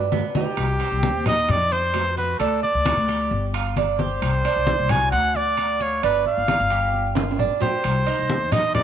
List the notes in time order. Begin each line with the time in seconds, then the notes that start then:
Already playing: G2 D4
0.12 B3, high conga, low timbale
0.35 D#4 G4, high conga, low timbale
0.57 C2, high conga, high timbale
0.80 C4, high conga, high timbale
0.91 C2
1.03 high conga
1.14 D#2
1.26 D#4 D#5, low conga, high timbale
1.48 F2 D5, high conga, low conga, high timbale
1.72 C5, high conga
1.94 high conga, high timbale, low timbale
2.17 F#4 B4, high conga
2.39 D2 D4 A4, high conga, high timbale
2.63 D5, high conga
2.74 D2
2.86 F#4, high conga, high timbale
2.96 D2
3.08 G4, high conga, high timbale
3.31 G1, high conga
3.53 F4, high conga, high timbale
3.76 D4, high conga, high timbale
3.99 G4 C5, high conga
4.22 C2, high conga, high timbale
4.44 D4, high conga, high timbale
4.56 C2
4.67 high conga
4.79 C2
4.89 F#4 G#5, low conga, high timbale
5.12 D2 F#5, high conga, high timbale
5.35 D5, high conga
5.57 high conga, high timbale
5.80 F4 C#5, high conga
6.03 G1 D4 B4, high conga, high timbale
6.26 F5, high conga
6.37 G1
6.48 F4, high conga, high timbale
6.60 G1
6.70 G4, high conga, high timbale
6.94 high conga
7.15 F4, high conga, high timbale
7.31 high timbale
7.39 D4, low conga
7.61 G4 C5, low conga, low timbale
7.84 C2, high conga, high timbale
8.06 D#4, high conga, high timbale
8.19 C2
8.30 high conga
8.41 E2
8.52 D#4 D#5, low conga, high timbale
8.75 F2 D5, high conga, low conga, high timbale